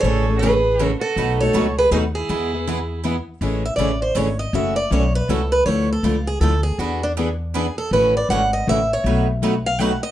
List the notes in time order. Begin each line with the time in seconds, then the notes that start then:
0.00 A1 C#3 A4 C#5
0.04 E3 G#3 A3 C#4 E4 G#4 A4
0.28 A3 C#4 G#4
0.36 G#4 B4
0.43 C#3 E3 G#3 A3 C#4 E4 G#4 A4
0.79 C#3 E3 G#3 A3 C#4 E4 F#4 G#4 A4
0.89 A4
0.99 F#4 A4
1.16 B1 B2 F#3 A3 D#4 F#4 B4
1.39 A3 D#4 F#4 A4 C#5
1.54 C#2 B2 F#3 A3 D#4 F#4 B4
1.78 G#4 B4
1.91 D#2 B2 F#3 A3 D#4 F#4 G#4 B4
2.15 E4 G#4
2.29 E2 E3 G#3 B3 E4 G#4
2.54 B3 E4 G#4
2.67 E3 G#3 B3 E4 G#4
3.04 E3 G#3 B3 E4 G#4
3.41 A1 C#3 E3 G#3 A3 C#4 E4 G#4 A4
3.65 E5
3.76 A1 C#3 E3 G#3 A3 E4 A4 D5
3.80 C#4 G#4
4.02 C5
4.15 G#1 C#3 E3 G#3 A3 C#4 E4 G#4 A4 C#5
4.39 D#5
4.53 F#1 C#3 E3 F#3 A3 C#4 E4 F#4 A4 E5
4.76 D5
4.91 B1 C#3 E3 F#3 A3 C#4 E4 F#4 A4 C#5
5.15 B4
5.29 C#2 C#3 E3 F#3 A3 C#4 E4 F#4 A4
5.52 B4
5.66 D2 D3 F3 A3 E4 A4 C#5
5.93 A4
6.03 C#2 D3 F3 A3 E4 F4 A4
6.27 G#4
6.41 D2 D3 F3 A3 E4 A4
6.63 G#4
6.79 E2 E3 B3 D4 F#4 G#4 B4
7.03 D4
7.17 E3 B3 D4 G#4 B4
7.55 E3 B3 D4 G#4 B4
7.78 A4
7.91 A1 C#3 E3 F#3 A3 C#4 E4 F#4 B4
8.17 D5
8.29 G#1 C#3 E3 F#3 A3 C#4 E4 F#4 F#5
8.53 D#5
8.67 A1 C#3 E3 F#3 A3 C#4 E4 F#4 E5
8.93 C#5
9.04 B1 B2 F#3 A3 D#4 F#4 B4
9.42 B2 F#3 A3 D#4 F#4 B4
9.66 F5
9.79 B2 F#3 A3 D#4 F#4 B4 F#5
10.03 D#5